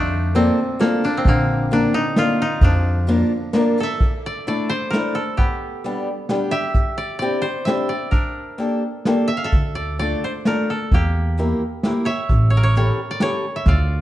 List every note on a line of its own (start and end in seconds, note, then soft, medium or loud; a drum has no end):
0.00 0.48 F2 loud
0.00 1.26 D3 medium
0.00 0.87 A3 medium
0.00 0.35 C4 medium
0.00 1.04 D4 loud
0.00 1.64 F4 medium
0.35 0.58 A#3 medium
0.35 1.17 C4 medium
0.35 0.58 D4 medium
0.35 0.58 F4 soft
0.35 0.58 A4 medium
0.35 ride medium
0.79 1.03 A#3 medium
0.79 1.28 A#3 medium
0.79 1.03 D4 medium
0.79 1.03 F4 medium
0.79 1.03 A4 medium
0.79 snare medium
0.79 ride soft
1.04 1.72 D4 medium
1.04 ride medium
1.17 3.77 C4 medium
1.25 1.84 A#1 loud
1.25 4.06 D3 medium
1.25 3.86 A#3 medium
1.25 kick medium
1.25 ride soft
1.71 1.94 A#3 medium
1.71 1.95 D4 medium
1.71 2.00 D4 medium
1.71 1.95 F4 medium
1.71 1.95 A#4 medium
1.71 ride soft
1.94 2.41 D#4 loud
2.16 2.40 A#3 medium
2.16 2.40 D4 medium
2.16 2.40 F4 medium
2.16 3.89 F4 loud
2.16 2.40 A#4 medium
2.16 snare medium
2.16 ride soft
2.42 2.70 D#4 medium
2.61 3.22 F2 loud
2.61 4.06 F3 medium
2.61 5.07 D4 medium
2.61 kick medium
2.61 ride soft
3.06 3.32 A#3 medium
3.06 3.32 D4 medium
3.06 3.32 F4 medium
3.06 3.32 A#4 medium
3.06 ride soft
3.53 3.77 A#3 medium
3.53 3.78 D4 medium
3.53 3.78 F4 medium
3.53 3.78 A#4 medium
3.53 snare medium
3.53 ride soft
3.77 4.96 A4 medium
3.77 ride medium
3.83 5.33 E5 medium
4.00 kick medium
4.00 closed hi-hat soft
4.26 4.48 D5 medium
4.47 4.71 A3 medium
4.47 4.71 D4 medium
4.47 4.71 E4 medium
4.47 4.71 A4 medium
4.47 6.08 D5 medium
4.47 closed hi-hat soft
4.69 5.44 C5 loud
4.91 5.16 A3 medium
4.91 5.17 D4 medium
4.91 5.16 E4 medium
4.91 5.17 A4 medium
4.91 5.21 A#4 medium
4.91 snare medium
4.91 closed hi-hat soft
5.15 7.05 A4 medium
5.37 7.48 B3 medium
5.37 6.52 G4 medium
5.37 kick medium
5.37 closed hi-hat soft
5.84 6.08 G3 medium
5.84 6.08 B3 medium
5.84 6.08 D4 medium
5.84 6.08 G4 medium
5.84 closed hi-hat soft
6.29 6.53 G3 medium
6.29 6.53 B3 medium
6.29 6.53 D4 medium
6.29 6.53 G4 medium
6.29 snare medium
6.29 closed hi-hat soft
6.51 8.56 G4 medium
6.51 7.65 E5 loud
6.74 kick medium
6.74 closed hi-hat soft
6.98 7.18 D5 medium
7.19 7.44 C4 medium
7.19 7.45 D4 medium
7.19 7.45 E4 medium
7.19 7.45 G4 medium
7.19 7.89 D5 medium
7.19 closed hi-hat soft
7.42 9.13 C5 medium
7.65 7.90 C4 medium
7.65 7.90 D4 medium
7.65 7.90 E4 medium
7.65 7.90 G4 medium
7.65 9.14 E5 medium
7.65 snare medium
7.65 closed hi-hat soft
7.89 9.49 D5 medium
8.11 10.55 D4 soft
8.11 9.51 A#4 medium
8.11 kick medium
8.11 closed hi-hat medium
8.58 8.82 A#3 medium
8.58 8.82 D4 medium
8.58 8.82 G4 soft
8.58 8.82 A4 medium
8.58 closed hi-hat soft
9.05 9.30 A#3 medium
9.05 9.30 D4 medium
9.05 9.30 G4 medium
9.05 9.30 A4 medium
9.05 snare medium
9.05 closed hi-hat soft
9.28 9.43 E5 medium
9.37 9.50 F5 medium
9.44 10.53 A4 medium
9.44 10.94 E5 medium
9.52 10.13 D2 medium
9.52 kick medium
9.52 closed hi-hat soft
9.75 9.99 D5 medium
9.99 10.23 A3 medium
9.99 10.23 D4 medium
9.99 10.23 F4 medium
9.99 10.23 A4 medium
9.99 11.59 D5 medium
9.99 closed hi-hat soft
10.24 10.30 C5 medium
10.45 10.69 A3 medium
10.45 10.69 D4 soft
10.45 10.69 F4 medium
10.45 10.69 A4 medium
10.45 10.76 A#4 medium
10.45 snare medium
10.45 closed hi-hat soft
10.70 11.00 A4 medium
10.91 11.52 E2 loud
10.91 13.72 A#3 soft
10.91 12.98 G4 medium
10.91 kick medium
10.91 closed hi-hat soft
11.37 11.62 A#3 medium
11.37 11.62 E4 medium
11.37 11.61 G4 medium
11.37 11.61 A#4 medium
11.37 closed hi-hat soft
11.83 12.07 A#3 medium
11.83 12.07 E4 medium
11.83 12.07 G4 medium
11.83 12.07 A#4 medium
11.83 snare medium
11.83 closed hi-hat soft
12.05 12.50 C#5 medium
12.05 13.55 E5 medium
12.29 12.89 A1 loud
12.29 kick medium
12.29 closed hi-hat soft
12.50 12.63 C#5 medium
12.57 14.01 A#4 medium
12.63 12.77 C#5 medium
12.75 12.99 C#4 medium
12.75 12.99 E4 medium
12.75 12.99 G4 medium
12.75 12.99 A4 medium
12.75 13.17 C#5 medium
12.75 closed hi-hat medium
13.11 13.28 D5 medium
13.20 13.44 C#4 medium
13.20 13.44 E4 medium
13.20 13.44 G4 medium
13.20 13.44 A4 medium
13.20 13.75 C#5 medium
13.20 snare medium
13.20 closed hi-hat soft
13.56 13.74 E5 medium
13.66 14.01 D2 loud
13.66 14.01 F4 medium
13.66 14.01 D5 medium
13.66 kick medium
13.66 closed hi-hat soft